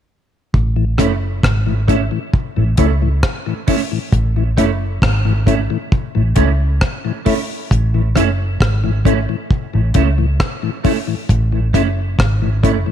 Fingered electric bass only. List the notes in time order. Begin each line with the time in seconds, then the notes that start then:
0.55 A1
0.99 F#1
1.44 G#1
2.58 A1
2.79 C#2
4.13 A1
4.58 F#1
5.03 G#1
6.16 A1
6.37 C#2
7.72 A1
8.17 F#1
8.61 G#1
9.75 A1
9.96 C#2
11.30 A1
11.75 F#1
12.19 G#1